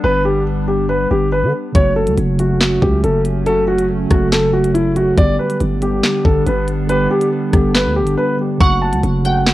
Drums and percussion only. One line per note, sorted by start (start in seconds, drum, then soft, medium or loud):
1.75 kick loud
1.75 closed hi-hat medium
2.07 closed hi-hat medium
2.18 closed hi-hat medium
2.39 closed hi-hat medium
2.61 snare loud
2.61 clap loud
2.82 kick medium
3.04 closed hi-hat medium
3.25 closed hi-hat medium
3.46 closed hi-hat medium
3.79 closed hi-hat medium
4.11 kick medium
4.11 cross-stick medium
4.11 closed hi-hat medium
4.32 snare loud
4.32 clap loud
4.32 closed hi-hat medium
4.64 closed hi-hat medium
4.75 closed hi-hat medium
4.96 closed hi-hat medium
5.18 kick loud
5.18 closed hi-hat medium
5.50 closed hi-hat medium
5.61 closed hi-hat medium
5.82 closed hi-hat medium
6.03 snare loud
6.03 clap loud
6.25 kick loud
6.46 closed hi-hat medium
6.68 closed hi-hat medium
6.89 closed hi-hat medium
7.21 closed hi-hat medium
7.53 kick medium
7.53 cross-stick medium
7.53 closed hi-hat medium
7.75 snare loud
7.75 clap loud
7.75 closed hi-hat medium
8.07 closed hi-hat medium
8.61 kick loud
8.61 closed hi-hat medium
8.93 closed hi-hat medium
9.03 closed hi-hat medium
9.25 closed hi-hat medium
9.46 snare loud
9.46 clap loud